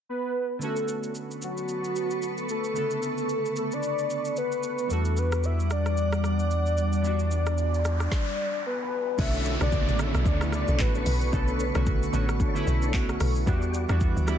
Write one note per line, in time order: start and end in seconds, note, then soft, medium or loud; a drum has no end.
0.09 0.58 B4 loud
0.59 2.71 D3 medium
0.59 2.71 A3 medium
0.59 4.86 B3 medium
0.59 2.72 B3 medium
0.59 2.73 C#4 medium
0.59 4.86 A4 medium
0.59 1.12 A4 loud
0.59 4.86 B4 medium
0.59 4.86 C#6 medium
0.59 shaker medium
0.64 2.73 F#4 medium
0.76 shaker medium
0.88 shaker loud
1.03 shaker medium
1.15 shaker medium
1.31 shaker soft
1.42 2.46 F#4 medium
1.42 shaker loud
1.57 shaker medium
1.69 shaker medium
1.84 shaker medium
1.96 shaker medium
2.11 shaker medium
2.22 shaker medium
2.38 shaker soft
2.49 3.53 A4 loud
2.49 shaker medium
2.64 shaker medium
2.73 4.87 C#3 medium
2.73 4.85 D3 medium
2.73 4.86 A3 medium
2.73 4.86 B3 medium
2.73 shaker medium
2.79 4.88 A4 medium
2.91 shaker medium
3.03 shaker medium
3.18 shaker medium
3.29 shaker medium
3.46 shaker soft
3.56 3.75 A4 medium
3.56 shaker loud
3.72 4.37 D5 loud
3.72 shaker medium
3.83 shaker medium
3.99 shaker medium
4.10 shaker medium
4.25 shaker medium
4.37 4.93 B4 loud
4.37 shaker medium
4.52 shaker soft
4.63 shaker medium
4.78 shaker medium
4.88 8.08 E2 medium
4.88 6.99 E3 medium
4.88 7.00 G3 medium
4.88 8.08 G3 medium
4.88 7.00 B3 medium
4.88 7.01 D4 medium
4.88 5.20 A4 loud
4.88 8.08 F#5 medium
4.88 8.08 D6 medium
4.88 shaker medium
4.93 7.02 F#4 medium
5.05 shaker medium
5.17 5.47 B4 loud
5.17 shaker medium
5.32 cross-stick medium
5.32 shaker soft
5.44 5.71 E5 loud
5.44 shaker medium
5.60 shaker soft
5.71 8.62 D5 loud
5.71 cross-stick medium
5.71 shaker loud
5.86 cross-stick medium
5.86 shaker medium
5.97 shaker medium
6.12 cross-stick loud
6.12 shaker medium
6.24 cross-stick medium
6.24 shaker medium
6.39 shaker medium
6.51 shaker medium
6.66 shaker soft
6.78 shaker medium
6.93 shaker medium
7.02 8.08 E3 medium
7.02 8.09 G3 medium
7.02 8.09 B3 medium
7.02 8.10 D4 medium
7.02 noise sweep medium
7.02 shaker medium
7.07 8.11 F#4 medium
7.19 shaker medium
7.31 shaker medium
7.46 cross-stick medium
7.46 shaker soft
7.58 shaker medium
7.74 shaker soft
7.85 cross-stick medium
7.85 shaker loud
8.00 cross-stick medium
8.00 shaker soft
8.12 kick loud
8.12 snare medium
8.66 9.21 B4 loud
9.18 9.57 B1 loud
9.18 9.51 D3 medium
9.18 9.51 A3 medium
9.18 9.52 B3 medium
9.18 9.52 C#4 medium
9.18 9.57 D4 loud
9.18 9.52 F#4 medium
9.18 13.43 A4 medium
9.18 9.57 A4 medium
9.18 13.43 B4 medium
9.18 9.57 C#5 loud
9.18 9.62 E5 loud
9.18 13.43 C#6 medium
9.18 kick loud
9.18 crash loud
9.18 downlifter medium
9.18 shaker medium
9.34 shaker medium
9.45 shaker loud
9.60 9.85 B1 loud
9.60 9.93 C#3 medium
9.60 9.92 D3 medium
9.60 9.92 A3 medium
9.60 9.92 B3 medium
9.60 9.71 D4 medium
9.60 9.93 F#4 medium
9.60 9.71 A4 medium
9.60 9.72 C#5 medium
9.60 10.02 D5 loud
9.60 cross-stick loud
9.60 shaker medium
9.72 kick loud
9.72 shaker medium
9.88 10.12 A1 medium
9.88 shaker medium
9.98 10.31 D3 medium
9.98 10.32 A3 medium
9.98 10.32 B3 medium
9.98 10.32 C#4 medium
9.98 10.13 D4 medium
9.98 10.14 A4 medium
9.98 10.33 A4 medium
9.98 10.14 C#5 medium
9.98 10.29 E5 loud
9.98 cross-stick loud
9.98 shaker loud
10.15 10.25 B1 medium
10.15 cross-stick medium
10.15 shaker medium
10.25 10.64 D2 loud
10.25 10.40 D4 medium
10.25 10.40 A4 medium
10.25 10.40 C#5 loud
10.25 10.53 D5 loud
10.25 kick loud
10.25 shaker medium
10.40 10.72 D3 medium
10.40 10.72 A3 medium
10.40 10.73 B3 medium
10.40 10.73 C#4 medium
10.40 10.73 E4 medium
10.40 cross-stick loud
10.40 shaker medium
10.52 10.82 D5 loud
10.52 cross-stick medium
10.52 shaker loud
10.68 10.78 B1 loud
10.68 10.79 D4 medium
10.68 10.79 A4 medium
10.68 10.79 C#5 medium
10.68 shaker medium
10.78 11.04 A1 loud
10.78 11.23 D3 medium
10.78 11.24 A3 medium
10.78 11.24 B3 medium
10.78 11.24 C#4 medium
10.78 11.25 F#4 medium
10.78 11.34 B4 medium
10.78 kick loud
10.78 clap loud
10.78 shaker medium
10.95 11.05 D4 medium
10.95 11.05 A4 medium
10.95 11.06 C#5 medium
10.95 shaker soft
11.06 11.31 B1 medium
11.06 open hi-hat medium
11.06 shaker medium
11.21 shaker medium
11.32 11.72 B1 loud
11.32 11.65 D3 medium
11.32 11.66 A3 medium
11.32 11.66 B3 medium
11.32 11.66 C#4 medium
11.32 11.71 D4 loud
11.32 11.72 A4 medium
11.32 11.67 A4 medium
11.32 11.84 B4 medium
11.32 11.72 C#5 loud
11.32 kick loud
11.32 shaker medium
11.48 shaker medium
11.60 shaker loud
11.74 12.10 B1 medium
11.74 12.06 D3 medium
11.74 12.06 A3 medium
11.74 12.07 B3 medium
11.74 12.07 C#4 medium
11.74 11.86 D4 medium
11.74 12.07 F#4 medium
11.74 11.86 A4 medium
11.74 11.86 C#5 medium
11.74 cross-stick loud
11.74 shaker medium
11.86 kick loud
11.86 shaker medium
12.03 shaker medium
12.12 12.63 A1 medium
12.12 12.46 D3 medium
12.12 12.46 A3 medium
12.12 12.46 B3 medium
12.12 12.47 C#4 medium
12.12 12.28 D4 medium
12.12 12.47 F#4 loud
12.12 12.28 A4 medium
12.12 12.28 C#5 medium
12.12 shaker loud
12.29 cross-stick medium
12.29 shaker medium
12.40 12.54 D4 medium
12.40 12.55 A4 medium
12.40 12.55 C#5 loud
12.40 kick loud
12.40 shaker medium
12.54 12.86 D3 loud
12.54 12.87 A3 medium
12.54 12.87 B3 medium
12.54 12.87 C#4 medium
12.54 12.88 E4 loud
12.54 shaker medium
12.67 13.16 B1 loud
12.67 shaker medium
12.82 12.93 D4 medium
12.82 12.93 A4 medium
12.82 12.93 C#5 medium
12.82 shaker medium
12.93 13.38 D3 medium
12.93 13.38 A3 medium
12.93 13.38 B3 medium
12.93 13.39 C#4 medium
12.93 13.39 F#4 loud
12.93 kick loud
12.93 clap loud
12.93 shaker medium
13.09 cross-stick loud
13.09 shaker soft
13.20 13.45 B1 loud
13.20 cross-stick loud
13.20 open hi-hat medium
13.20 shaker medium
13.35 shaker medium
13.46 13.86 E2 loud
13.46 13.80 E3 medium
13.46 13.80 G3 medium
13.46 13.80 B3 medium
13.46 13.81 D4 medium
13.46 14.38 E4 medium
13.46 13.86 F#4 loud
13.46 13.81 F#4 loud
13.46 13.86 G4 medium
13.46 13.86 D5 loud
13.46 14.38 F#5 medium
13.46 14.38 D6 loud
13.46 kick loud
13.46 shaker medium
13.62 shaker medium
13.74 shaker loud
13.88 14.14 E2 loud
13.88 14.20 E3 medium
13.88 14.21 G3 medium
13.88 14.21 B3 medium
13.88 14.21 D4 medium
13.88 14.00 F#4 medium
13.88 14.22 F#4 loud
13.88 14.00 G4 medium
13.88 14.00 D5 medium
13.88 cross-stick loud
13.88 shaker medium
14.01 kick loud
14.01 shaker medium
14.16 14.38 D2 medium
14.16 shaker medium
14.26 14.38 E3 medium
14.26 14.38 G3 medium
14.26 14.38 B3 medium
14.26 14.38 D4 medium
14.26 14.38 E4 loud
14.26 14.38 F#4 medium
14.26 14.38 G4 medium
14.26 14.38 D5 medium
14.26 cross-stick loud
14.26 shaker loud